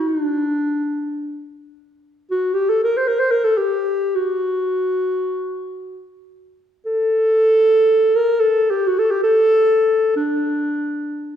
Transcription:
0.08 D#4
0.22 D4
2.31 F#4
2.54 G4
2.69 A4
2.84 A#4
2.97 C5
3.08 A#4
3.20 C5
3.32 A#4
3.44 A4
3.58 G4
4.15 F#4
6.86 A4
8.16 A#4
8.40 A4
8.71 G4
8.87 F#4
8.99 A4
9.11 G4
9.24 A4
10.16 D4

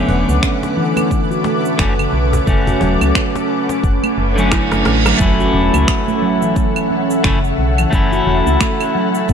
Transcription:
Already playing: D3 A3 B3 C#4 A4 B4 F#5 D6
0.09 E1, cajon bass
0.29 C#2, cabasa
0.43 C#4, finger snap, kick, cabasa
0.63 cajon slap, cabasa
0.77 E3
0.97 A3, cajon slap, cabasa, claves
1.11 kick, cabasa
1.31 F#4, cabasa
1.44 A3, cajon slap
1.65 cabasa
1.78 F#1 D3 A3 C#4, finger snap, kick, cabasa
1.99 C#3, cabasa, claves
2.13 B1
2.33 cajon bass, cabasa
2.47 F#1 C#3 A3 C#4, kick, cabasa
2.67 F#4, cajon bass, cabasa
2.81 E1 F#3, cajon bass
3.01 C#2, cabasa, claves
3.15 C#4, finger snap, kick, cabasa
3.35 cajon slap, cabasa
3.69 cajon slap, cabasa
3.83 F#1, kick, reverse cymbal, cabasa
4.03 A3, cabasa, claves
4.18 F#1
4.36 D3 F#3 A3 C#4, cabasa
4.52 E4, finger snap, kick, cross-stick, cabasa
4.72 F#1 A3, cross-stick, cajon slap, cabasa
4.85 A1 A3, cross-stick, cajon slap
5.06 F#3, cross-stick, cajon slap, cabasa, claves
5.18 F#1 F#3 A3 C#4 A4 E5 F#5, kick, impact, cabasa
5.22 E4
5.40 F#4, cabasa
5.54 E1 C#4
5.74 C#2, cabasa, claves
5.88 finger snap, kick, cabasa
6.08 A3, cabasa
6.22 F#3
6.42 E3, cabasa
6.56 A3, kick, cabasa
6.76 cabasa, claves
6.90 C#4
7.10 cabasa
7.24 F#1 C#3 A3 C#4 E4, finger snap, kick, cabasa
7.44 cabasa
7.58 B1
7.78 E3, cabasa, claves
7.91 F#1 A3 C#4, kick, cabasa
7.95 E4
8.13 F#4, cabasa
8.26 E1 F#4
8.47 C#2, cabasa
8.61 A3, finger snap, kick, cabasa
8.80 cabasa, claves
8.95 F#3
9.15 cabasa
9.29 F#1 B3, kick, cabasa

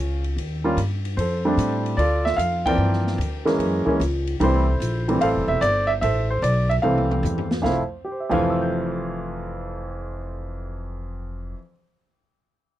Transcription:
Already playing: C#2 C#5 F5 G#5
0.24 ride
0.36 D#2, ride
0.64 G3 A#3 C#4 F4
0.77 G2, hi-hat pedal, ride
1.05 ride
1.17 F2 A4 C5, ride
1.45 G3 A3 C4 D4
1.57 A2, hi-hat pedal, ride
1.86 ride
1.97 D2 F4 A4 D5, ride
2.25 E5, snare
2.37 F2 F5, hi-hat pedal, ride
2.66 E3 F3 A#3 C4 A#4 D5 G5, kick, ride
2.78 G2
2.93 snare
3.07 snare
3.18 D2, hi-hat pedal, ride
3.45 E3 G#3 A#3 C#4, snare, ride
3.59 F#2, ride
3.86 E3 G#3 A#3 C#4, muted upright bass stroke, kick
4.00 C#2, hi-hat pedal, ride
4.27 ride
4.40 C2 E3 G3 A3 C4 E4 A4 C5, ride
4.80 A#1, hi-hat pedal, ride
5.08 E3 G3 A3 C4, ride
5.21 A1 A4 C5 F5, ride
5.34 F1
5.47 E1 E5
5.61 G1 D5, hi-hat pedal, ride
5.87 E5
6.01 A1 A4 C5 E5, ride
6.30 C5
6.42 B1 D5, hi-hat pedal, ride
6.69 E5, ride
6.82 C2 E3 G3 A3 C4 A4 C5 F5, mid tom
6.98 mid tom
7.11 mid tom
7.23 E2, floor tom, hi-hat pedal
7.38 floor tom
7.51 snare
7.62 F1 F2 F3 A3 E4 F5, kick, snare
8.05 G4
8.12 C5
8.20 E5
8.29 F1 F2 E3 F3 A3 F5 G5, kick, crash
8.50 E6
8.61 G6

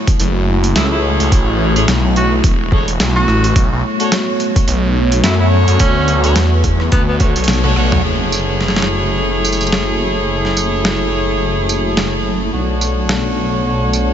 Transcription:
Already playing: A3 E4 F#4
0.07 kick, closed hi-hat
0.20 F#1, closed hi-hat
0.64 closed hi-hat
0.75 C#2 E4 G#4 A4 C#5, snare, closed hi-hat
0.92 E4
1.20 C#2, closed hi-hat
1.32 A1, kick, closed hi-hat
1.76 E4 G#4 A4 C#5, closed hi-hat
1.88 B1, snare, closed hi-hat
2.16 F#4, closed hi-hat
2.44 E1, kick, closed hi-hat
2.72 E4 G#4 A4 C#5, kick
2.88 closed hi-hat
3.00 B1, snare, closed hi-hat
3.16 F#4, cross-stick
3.28 A1, cross-stick
3.44 closed hi-hat
3.56 B1 B3 F#4 C#5, kick, closed hi-hat
3.72 B1
4.00 D4 F#4 A4 C#5, closed hi-hat
4.12 snare, closed hi-hat
4.40 closed hi-hat
4.56 kick, closed hi-hat
4.68 B1, closed hi-hat
5.12 closed hi-hat
5.24 F#2 D3 E4 F#4 A4 C#5, snare, closed hi-hat
5.40 E4
5.68 F#2, closed hi-hat
5.79 D2 C#4 B4, kick, closed hi-hat
6.08 closed hi-hat
6.24 D4 F#4 A4 C#5, closed hi-hat
6.35 E2, snare, closed hi-hat
6.64 kick, closed hi-hat
6.80 cross-stick
6.92 D2 B3, kick, closed hi-hat
7.08 B3
7.20 D4 F#4 A4 C#5, kick, closed hi-hat
7.36 B1, closed hi-hat
7.44 closed hi-hat
7.48 snare, closed hi-hat, high tom
7.53 closed hi-hat
7.64 D4 F#4 A4 C#5, cross-stick, high tom
7.76 B1 D4 F#4 A4 C#5, cross-stick
7.92 mid tom
8.03 F#1 A3 E4 F#4 G#4 A4 C#5
8.32 tambourine
8.61 snare
8.68 snare
8.76 snare
8.82 snare
9.45 tambourine
9.52 tambourine
9.61 tambourine
9.67 tambourine
9.72 snare
10.45 snare
10.57 tambourine
10.85 snare
11.69 tambourine
11.97 snare
12.53 B1 B3 D4 F#4 A4 C#5
12.81 tambourine
13.09 snare
13.93 tambourine

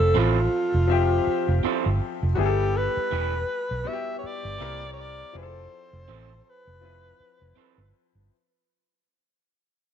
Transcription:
Already playing: F3 C4 A4 E5
0.00 F1
0.14 A1 C4 E4 F4 A4 C5
0.74 F1
0.87 F3 C4 G4 E5
1.27 muted fingered electric bass stroke
1.48 F1
1.63 C4 E4 A4 C5
1.86 G1
2.23 F1
2.35 G1 G3 B3 E4 F#4
2.39 G4 G#4
2.46 A4
2.77 B4
2.97 muted fingered electric bass stroke
3.11 E1 A3 E4 G4 B4
3.71 B1
3.84 G3 B3 E4 F#4
3.88 E5
3.93 G4
4.19 C#5
4.23 D5, muted fingered electric bass stroke
4.45 G1
4.58 C2 G3 A#3 C4 E4 G4 A#4 C5
4.93 C#5
5.01 D5
5.33 F1 F3 C4 E4 G#4
5.38 C5
5.43 A4
5.93 F1
6.08 A1 C4 E4 A4 C5
6.42 C5
6.49 B4
6.67 F1
6.81 F3 C4 E4 B4
7.20 muted fingered electric bass stroke
7.42 F1
7.56 C4 E4 A4 C5
7.78 G1
8.15 G1

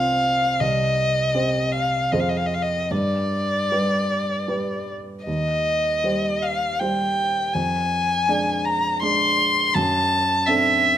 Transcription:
Already playing: C2 C4 F4 C5 F5
0.60 C2 D#5
1.35 C4 G4 C5
1.72 F5
2.12 F2 C4 G#4 C5 D#5
2.20 F5
2.29 D#5
2.37 F5
2.46 D#5
2.54 F5
2.62 D#5
2.91 G2 D5
3.72 G3 G4 B4
4.48 G3 G4 B4
5.25 D#2 D#5
6.04 G3 G4 C5
6.42 F5
6.80 G3 G4 C5 G5
7.53 F2 G#5
8.28 G#3 D4 D5
8.65 A#5
9.02 G#3 D4 D5 C6
9.75 F#2 A5
10.47 C4 D4 A4 E5

